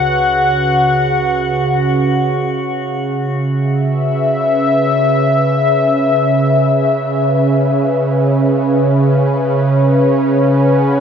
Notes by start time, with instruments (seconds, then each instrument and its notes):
Already playing: sub bass C#2, analog synth pad C#3 C#4 B4 F#5, synth texture F#4 F#5
3.32 analog synth pad C#4
3.43 analog synth pad E5
3.81 analog synth pad B4
10.64 analog synth pad F#5